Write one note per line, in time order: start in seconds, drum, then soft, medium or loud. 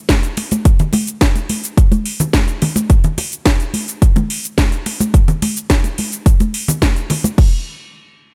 0.09 kick loud
0.09 snare loud
0.09 closed hi-hat medium
0.09 high conga medium
0.09 cabasa medium
0.23 closed hi-hat soft
0.23 cabasa soft
0.37 open hi-hat medium
0.37 muted conga medium
0.51 closed hi-hat soft
0.51 high conga medium
0.51 cabasa medium
0.65 kick loud
0.65 closed hi-hat medium
0.65 cabasa medium
0.79 closed hi-hat soft
0.79 low conga medium
0.79 cabasa soft
0.93 open hi-hat loud
0.93 muted conga soft
0.93 high conga medium
1.07 closed hi-hat soft
1.07 cabasa medium
1.21 kick loud
1.21 snare loud
1.21 closed hi-hat medium
1.21 cabasa soft
1.35 closed hi-hat soft
1.35 muted conga soft
1.35 cabasa soft
1.49 open hi-hat loud
1.49 high conga medium
1.64 closed hi-hat soft
1.64 cabasa medium
1.77 kick loud
1.77 closed hi-hat medium
1.77 cabasa medium
1.92 closed hi-hat soft
1.92 high conga medium
1.92 cabasa soft
2.06 open hi-hat loud
2.20 closed hi-hat soft
2.20 low conga medium
2.20 cabasa medium
2.33 kick loud
2.33 snare loud
2.33 closed hi-hat medium
2.33 high conga medium
2.33 cabasa medium
2.48 closed hi-hat soft
2.48 cabasa soft
2.62 open hi-hat medium
2.62 muted conga medium
2.62 low conga medium
2.75 closed hi-hat soft
2.75 muted conga soft
2.75 high conga medium
2.75 cabasa medium
2.90 kick loud
2.90 closed hi-hat medium
2.90 cabasa medium
3.04 closed hi-hat soft
3.04 low conga medium
3.04 cabasa soft
3.18 open hi-hat loud
3.18 muted conga soft
3.18 high conga medium
3.32 closed hi-hat soft
3.32 cabasa medium
3.46 kick loud
3.46 snare loud
3.46 closed hi-hat medium
3.46 cabasa soft
3.60 closed hi-hat soft
3.60 cabasa soft
3.74 open hi-hat loud
3.74 high conga medium
3.88 closed hi-hat soft
3.88 cabasa medium
4.02 kick loud
4.02 closed hi-hat medium
4.02 cabasa medium
4.16 closed hi-hat soft
4.16 high conga medium
4.16 low conga medium
4.16 cabasa soft
4.30 open hi-hat loud
4.44 closed hi-hat soft
4.44 cabasa medium
4.58 kick loud
4.58 snare loud
4.58 closed hi-hat medium
4.58 high conga medium
4.58 cabasa medium
4.72 closed hi-hat soft
4.72 cabasa soft
4.86 open hi-hat loud
4.86 muted conga medium
5.00 closed hi-hat soft
5.00 high conga medium
5.00 cabasa medium
5.14 kick loud
5.14 closed hi-hat medium
5.14 cabasa medium
5.28 closed hi-hat soft
5.28 low conga medium
5.28 cabasa soft
5.42 open hi-hat loud
5.42 muted conga soft
5.42 high conga medium
5.56 closed hi-hat soft
5.56 cabasa medium
5.70 kick loud
5.70 snare loud
5.70 closed hi-hat medium
5.70 cabasa soft
5.84 closed hi-hat soft
5.84 muted conga soft
5.84 cabasa soft
5.98 open hi-hat loud
5.98 high conga medium
6.12 closed hi-hat soft
6.12 cabasa medium
6.26 kick loud
6.26 closed hi-hat medium
6.26 cabasa medium
6.40 closed hi-hat soft
6.40 high conga medium
6.40 cabasa soft
6.54 open hi-hat loud
6.68 closed hi-hat soft
6.68 low conga medium
6.68 cabasa medium
6.82 kick loud
6.82 snare loud
6.82 closed hi-hat medium
6.82 high conga medium
6.82 cabasa medium
6.96 closed hi-hat soft
6.96 cabasa soft
7.10 open hi-hat medium
7.10 muted conga medium
7.10 low conga medium
7.24 closed hi-hat soft
7.24 muted conga soft
7.24 high conga loud
7.24 cabasa medium
7.38 kick loud
7.38 crash medium